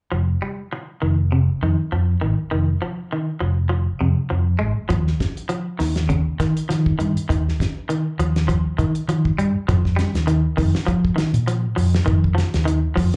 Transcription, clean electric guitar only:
0.12 0.30 F3 medium
0.42 0.60 G3 medium
0.73 muted clean electric guitar stroke medium
1.02 1.20 D#3 medium
1.32 1.50 C3 medium
1.63 1.80 D#3 medium
1.92 2.10 F3 medium
2.21 2.39 D#3 medium
2.51 2.69 D#3 medium
2.82 3.00 F3 medium
3.13 3.30 D#3 medium
3.40 3.58 F3 medium
3.69 3.88 F3 medium
4.01 4.18 C3 medium
4.30 4.48 F3 medium
4.59 4.77 G#3 medium
4.89 5.07 F3 medium
5.49 5.67 F3 medium
5.79 5.97 D#3 medium
6.09 6.27 C#3 medium
6.40 6.58 D#3 medium
6.69 6.87 F3 medium
6.99 7.17 D#3 medium
7.29 7.47 D#3 medium
7.89 8.07 D#3 medium
8.19 8.37 F3 medium
8.48 8.66 F3 medium
8.78 8.96 D#3 medium
9.09 9.26 F3 medium
9.38 9.56 G3 medium
9.68 9.86 F3 medium
9.96 10.14 G3 medium
10.27 10.45 D#3 medium
10.57 10.75 D#3 medium
10.87 11.04 F3 medium
11.16 11.34 D#3 medium
11.47 11.65 F3 medium
11.76 11.94 F3 medium
12.06 12.24 D#3 medium
12.35 12.53 F3 medium
12.65 12.83 D#3 medium
12.96 13.14 F3 medium

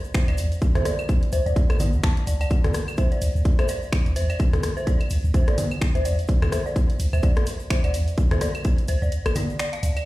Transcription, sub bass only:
0.28 0.39 D2 loud
0.38 0.48 F2 loud
0.75 0.83 D2 loud
1.33 1.43 D2 medium
1.46 1.54 D2 medium
1.70 1.95 A1 medium
1.93 2.01 F2 medium
2.27 2.46 D2 medium
2.64 2.72 D2 loud
3.22 3.32 D2 medium
3.35 3.43 D2 loud
3.59 3.66 A1 medium
4.06 4.18 D2 loud
4.16 4.26 F2 loud
4.53 4.61 D2 loud
5.10 5.21 D2 medium
5.24 5.32 D2 loud
5.48 5.55 A1 loud
5.95 6.06 D2 medium
6.05 6.15 F2 loud
6.42 6.50 D2 loud
7.00 7.10 D2 medium
7.13 7.21 D2 loud
7.37 7.44 A1 medium
7.84 7.95 D2 loud
7.94 8.04 F2 loud
8.31 8.39 D2 loud
8.89 8.99 D2 medium
9.02 9.10 D2 loud
9.26 9.33 A1 medium
9.83 9.93 D2 medium

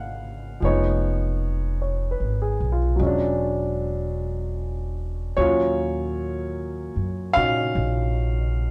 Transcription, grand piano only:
0.00 0.59 F3 soft
0.00 0.61 G#3 soft
0.00 0.62 A#3 soft
0.00 0.64 C4 soft
0.00 0.62 C#4 soft
0.00 0.64 D#4 soft
0.00 0.63 G#4 soft
0.00 0.58 F5 medium
0.00 0.63 F#5 medium
0.00 0.63 G#5 medium
0.60 2.99 F3 soft
0.60 2.98 G#3 soft
0.60 3.01 B3 soft
0.65 3.01 D#4 soft
0.65 1.80 C#5 medium
1.82 2.35 C#5 soft
2.11 2.61 B4 soft
2.42 2.78 G#4 soft
2.72 3.12 F4 soft
2.96 5.35 F#3 soft
2.96 5.37 G#3 soft
3.03 5.37 C#4 soft
3.03 5.40 D4 soft
5.37 8.71 A#2 soft
5.37 8.71 F#3 soft
5.37 7.33 C#4 soft
5.37 8.71 F4 soft
5.37 7.29 C#5 medium
7.33 8.71 C#4 soft
7.33 8.71 D#4 soft
7.33 8.71 F#4 soft
7.33 8.71 F5 medium

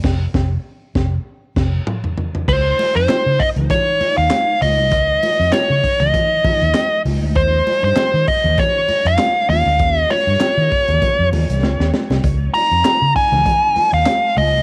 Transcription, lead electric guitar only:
2.49 2.95 C5 medium
2.96 3.41 C5 medium
3.39 3.48 D#5 medium
3.71 4.15 C#5 loud
4.18 4.62 F5 loud
4.62 5.56 D#5 loud
5.52 6.02 C#5 medium
6.00 7.01 D#5 medium
7.36 7.83 C5 medium
7.84 8.25 C5 medium
8.28 8.59 D#5 medium
8.59 9.07 C#5 loud
9.07 9.49 F5 loud
9.50 9.98 F5 loud
9.98 10.12 D#5 loud
10.10 11.28 C#5 medium
12.54 13.11 A#5 loud
13.16 13.89 G#5 loud
13.94 14.37 F5 medium
14.38 14.62 D#5 medium

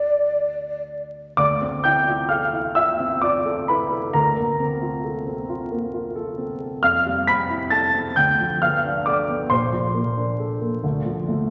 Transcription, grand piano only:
0.00 1.32 D2 soft
0.00 1.32 C4 soft
0.00 1.33 F4 soft
0.00 1.34 G4 soft
0.00 1.34 E5 soft
1.37 4.10 D2 medium
1.37 1.81 D5 medium
1.37 1.84 D6 medium
1.61 1.98 C4 soft
1.84 2.21 E4 soft
1.84 2.28 G5 medium
1.84 2.30 G6 medium
2.08 2.45 F4 soft
2.29 2.67 A4 soft
2.29 2.73 F5 medium
2.29 2.76 F6 medium
2.53 2.90 E4 soft
2.75 3.13 F4 soft
2.75 3.19 E5 medium
2.75 3.22 E6 medium
3.00 3.36 C4 soft
3.22 3.59 F4 soft
3.22 3.65 D5 medium
3.22 3.68 D6 medium
3.45 3.82 A4 soft
3.68 4.05 E4 soft
3.68 4.11 B4 medium
3.68 4.14 B5 medium
3.92 4.14 A4 soft
4.13 6.79 D2 medium
4.13 6.79 A#4 medium
4.13 6.82 A#5 medium
4.37 4.72 A#3 soft
4.60 4.95 C4 soft
4.82 5.17 F4 soft
5.04 5.39 A4 soft
5.26 5.61 C4 soft
5.49 5.84 F4 soft
5.72 6.07 A#3 soft
5.94 6.29 F4 soft
6.16 6.51 A4 medium
6.38 6.74 C4 soft
6.60 6.83 A4 soft
6.83 8.12 F2 medium
6.83 7.25 F5 medium
6.83 7.27 F6 medium
7.06 7.41 G3 soft
7.27 7.63 C4 soft
7.27 7.69 B5 medium
7.27 7.71 B6 medium
7.50 7.85 E4 soft
7.70 8.07 A4 soft
7.70 8.13 A5 medium
7.70 8.15 A6 medium
7.94 8.16 C4 soft
8.16 9.47 D2 medium
8.16 8.59 G5 medium
8.16 8.61 G6 medium
8.40 8.75 F3 soft
8.62 8.98 B3 soft
8.62 9.03 F5 medium
8.62 9.06 F6 medium
8.84 9.19 D4 soft
9.06 9.42 A4 soft
9.06 9.48 D5 medium
9.06 9.50 D6 medium
9.29 9.51 B3 soft
9.50 10.79 A#1 medium
9.50 11.50 C5 medium
9.50 11.50 C6 medium
9.73 10.08 F3 soft
9.95 10.30 A#3 soft
10.17 10.52 D4 soft
10.39 10.74 A4 soft
10.61 10.83 A#3 soft
10.84 11.50 D2 medium
11.05 11.43 F3 soft
11.28 11.50 A3 soft

